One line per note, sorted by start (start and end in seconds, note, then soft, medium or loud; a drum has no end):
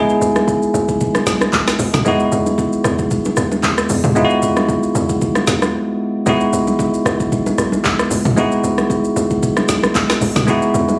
0.00 0.18 C#2 loud
0.00 2.01 G#3 medium
0.00 2.02 B3 medium
0.00 2.02 D#4 medium
0.00 2.02 E4 medium
0.00 2.03 G#4 medium
0.09 shaker medium
0.21 0.67 C#2 loud
0.21 shaker loud
0.36 cross-stick loud
0.36 low bongo medium
0.36 shaker medium
0.48 kick medium
0.48 high bongo medium
0.48 shaker medium
0.62 shaker medium
0.74 1.10 C#2 loud
0.74 high bongo medium
0.74 shaker medium
0.89 kick loud
0.89 shaker medium
1.01 kick loud
1.01 low conga medium
1.01 shaker medium
1.15 cross-stick loud
1.15 low bongo medium
1.15 shaker medium
1.27 1.50 B1 medium
1.27 snare medium
1.27 shaker loud
1.41 cross-stick loud
1.41 low bongo medium
1.41 shaker medium
1.53 1.76 B1 medium
1.53 kick medium
1.53 clap loud
1.53 high bongo medium
1.53 shaker medium
1.68 cross-stick loud
1.68 snare medium
1.68 shaker medium
1.79 1.92 C#2 loud
1.79 open hi-hat medium
1.79 low conga medium
1.79 shaker loud
1.94 2.04 B1 loud
1.94 snare medium
1.94 mid tom loud
1.94 high bongo medium
1.94 shaker medium
2.05 2.29 E2 loud
2.05 4.12 G#3 medium
2.05 4.12 B3 medium
2.05 4.12 D#4 medium
2.05 4.13 E4 medium
2.05 4.13 F#4 medium
2.05 kick loud
2.05 low conga medium
2.05 shaker medium
2.20 shaker medium
2.32 2.78 E2 loud
2.32 shaker loud
2.46 low bongo medium
2.46 shaker medium
2.58 kick medium
2.58 high bongo medium
2.58 shaker medium
2.73 shaker medium
2.84 3.20 E2 loud
2.84 cross-stick loud
2.84 high bongo medium
2.84 shaker medium
2.99 kick loud
2.99 shaker medium
3.11 kick loud
3.11 low conga medium
3.11 shaker medium
3.25 low bongo medium
3.25 shaker medium
3.37 3.60 D#2 medium
3.37 cross-stick medium
3.37 shaker loud
3.52 low bongo medium
3.52 shaker medium
3.63 3.87 D#2 loud
3.63 kick medium
3.63 clap medium
3.63 high bongo medium
3.63 shaker medium
3.78 cross-stick loud
3.78 shaker medium
3.89 4.02 E2 medium
3.89 open hi-hat medium
3.89 low conga medium
3.89 shaker loud
4.04 4.15 D#2 loud
4.04 mid tom loud
4.04 high bongo medium
4.04 shaker medium
4.15 4.39 E2 loud
4.15 6.22 G#3 medium
4.15 6.23 B3 medium
4.15 6.23 D#4 medium
4.15 6.23 E4 medium
4.15 4.24 F4 medium
4.15 kick loud
4.15 low conga medium
4.15 shaker medium
4.25 6.27 F#4 medium
4.30 shaker medium
4.42 4.88 E2 medium
4.42 shaker loud
4.57 cross-stick loud
4.57 low bongo medium
4.57 shaker medium
4.68 kick medium
4.68 high bongo medium
4.68 shaker medium
4.83 shaker medium
4.95 5.31 E2 loud
4.95 high bongo soft
4.95 shaker loud
5.09 kick loud
5.09 shaker medium
5.21 kick loud
5.21 low conga medium
5.21 shaker medium
5.35 cross-stick loud
5.35 low bongo medium
5.35 shaker medium
5.47 5.71 D#2 loud
5.47 snare medium
5.47 shaker loud
5.62 cross-stick loud
5.62 low bongo medium
5.62 shaker medium
6.26 6.50 C#2 loud
6.26 8.33 G#3 medium
6.26 8.33 B3 medium
6.26 8.34 D#4 medium
6.26 8.34 E4 medium
6.26 8.34 F#4 medium
6.26 kick loud
6.26 low conga medium
6.26 shaker medium
6.41 shaker medium
6.53 6.99 C#2 loud
6.53 shaker loud
6.67 low bongo medium
6.67 shaker medium
6.79 kick medium
6.79 high bongo medium
6.79 shaker medium
6.94 shaker medium
7.05 7.41 C#2 loud
7.05 cross-stick loud
7.05 high bongo medium
7.05 shaker loud
7.20 kick loud
7.20 shaker medium
7.32 kick loud
7.32 low conga medium
7.32 shaker medium
7.46 low bongo medium
7.46 shaker medium
7.58 7.81 B1 medium
7.58 cross-stick medium
7.58 shaker loud
7.72 low bongo medium
7.72 shaker medium
7.84 8.08 B1 medium
7.84 kick loud
7.84 clap medium
7.84 high bongo medium
7.84 shaker medium
7.99 cross-stick loud
7.99 shaker medium
8.10 8.24 C#2 medium
8.10 open hi-hat medium
8.10 low conga medium
8.10 shaker loud
8.25 8.36 B1 loud
8.25 mid tom loud
8.25 high bongo soft
8.25 shaker medium
8.36 8.60 C#2 loud
8.36 10.43 G#3 medium
8.36 10.44 B3 medium
8.36 10.44 D#4 medium
8.36 10.44 E4 medium
8.36 10.45 F#4 medium
8.36 kick loud
8.36 low conga medium
8.36 shaker medium
8.52 shaker medium
8.64 9.10 C#2 loud
8.64 shaker loud
8.78 cross-stick loud
8.78 low bongo medium
8.78 shaker medium
8.90 kick medium
8.90 high bongo medium
8.90 shaker medium
9.04 shaker medium
9.16 9.52 C#2 loud
9.16 high bongo medium
9.16 shaker loud
9.31 kick loud
9.31 shaker medium
9.43 kick loud
9.43 low conga medium
9.43 shaker medium
9.57 cross-stick loud
9.57 low bongo medium
9.57 shaker medium
9.69 9.92 B1 medium
9.69 snare medium
9.69 shaker loud
9.83 cross-stick loud
9.83 low bongo medium
9.83 shaker medium
9.95 10.18 B1 loud
9.95 kick loud
9.95 clap loud
9.95 high bongo medium
9.95 shaker medium
10.10 cross-stick loud
10.10 snare medium
10.10 shaker medium
10.21 10.34 C#2 medium
10.21 open hi-hat medium
10.21 low conga medium
10.21 shaker medium
10.36 10.49 B1 medium
10.36 snare medium
10.36 mid tom loud
10.36 high bongo medium
10.36 shaker medium
10.47 10.71 E2 loud
10.47 10.99 G#3 medium
10.47 10.99 B3 medium
10.47 10.99 D#4 medium
10.47 10.99 E4 medium
10.47 10.99 F#4 medium
10.47 kick loud
10.47 low conga medium
10.47 shaker medium
10.62 shaker medium
10.74 10.99 E2 loud
10.74 shaker loud
10.89 low bongo medium
10.89 shaker medium